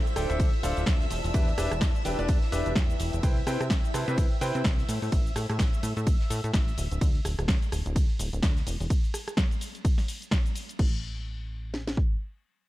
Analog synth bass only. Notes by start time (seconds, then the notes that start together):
0.16 D1
0.30 D1
0.40 D2
0.63 D1
0.77 D1
0.87 D2
1.11 E1
1.24 E1
1.34 E2
1.58 E1
1.72 E1
1.81 E2
2.05 E1
2.19 E1
2.29 E2
2.52 E1
2.66 E1
2.76 E2
3.00 E1
3.13 E1
3.23 C2
3.47 C3
3.61 C3
3.70 C2
3.94 C3
4.08 C3
4.18 C2
4.41 C3
4.55 C3
4.65 C2
4.89 A2
5.02 A2
5.12 A1
5.36 A2
5.50 A2
5.60 A1
5.83 A2
5.97 A2
6.07 A1
6.30 A2
6.44 A2
6.54 A1
6.78 D1
6.91 D1
7.01 D2
7.25 D1
7.39 D1
7.49 D2
7.72 D1
7.86 D1
7.96 D2
8.19 D1
8.33 D1
8.43 D2
8.67 E1
8.80 E1
10.79 A1